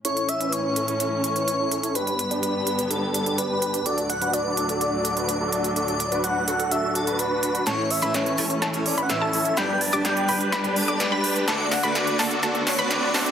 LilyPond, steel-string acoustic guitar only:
\new Staff \with { instrumentName = "Steel-string acoustic guitar" } { \time 4/4 \key d \major \tempo 4 = 126 r1 | r1 | r1 | r1 |
<a, a cis' e' cis''>8. <a, a cis' e' cis''>8. <a, a cis' e' cis''>16 r8 <a, a cis' e' cis''>8. <a, a cis' e' cis''>4 | <g, b d' g' d''>8. <g, b d' g' d''>8. <g, b d' g' d''>16 r8 <g, b d' g' d''>8. <g, b d' g' d''>4 | <d a d' fis' d''>8. <d a d' fis' d''>8. <d a d' fis' d''>16 r16 <d a d' fis' d''>8. <d a d' fis' d''>8. <d a d' fis' d''>16 r16 | }